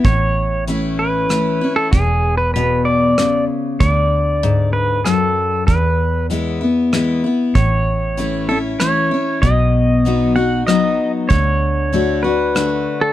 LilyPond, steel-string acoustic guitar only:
\new Staff \with { instrumentName = "Steel-string acoustic guitar" } { \time 3/4 \key a \major \tempo 4 = 96 << { r4 <e a cis' e'>4 <e a cis' e'>8 <cis' e'>8 | r2. | r2. | r4 <e gis b e'>8 <b e'>8 <e gis b e'>8 <b e'>8 |
r4 <e a cis' e'>8 <cis' e'>8 <e a cis' e'>8 <cis' e'>8 | r4 <fis b dis' fis'>8 <dis' fis'>8 <fis b dis' fis'>4 | r4 <d a d' fis'>8 <d' fis'>8 <d a d' fis'>4 | } \\ { a,2 r4 | e,4 b,4 cis4 | d4 gis,4 fis,4 | e,2 r4 |
a,2 r4 | b,2 r4 | d2 r4 | } >> }